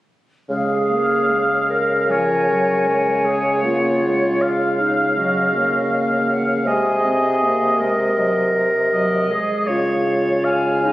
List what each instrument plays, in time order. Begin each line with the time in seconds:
0.49 bassoon C#3, french horn G#3, clarinet G#4, flute F5, oboe F5
0.90 french horn A#3
1.30 french horn G#3
1.70 clarinet A#4
2.09 french horn F3, oboe C#5, flute G#5
2.48 french horn F#3
2.86 french horn G#3, oboe C#5
3.25 french horn G#3, clarinet G#4
3.63 french horn A#3, clarinet F4, flute F#5
4.03 french horn G#3
4.40 flute F5, oboe F5
4.79 clarinet D#4
5.17 french horn F#3, clarinet F#4, flute D#5
5.55 french horn A#3
5.92 flute D#5
6.30 flute F#5
6.65 bassoon C3, french horn G#3, clarinet G#4, oboe D#5, flute G#5
7.05 french horn C4
7.43 french horn A#3
7.79 french horn G#3, clarinet A#4
8.16 french horn F#3, flute D#5
8.92 french horn F#3, oboe D#5
9.29 french horn G#3, clarinet G#4
9.67 bassoon C#3, french horn G#3, clarinet F4, oboe C#5, flute F5
10.44 oboe F5, flute G#5
10.83 clarinet D#4, flute G#5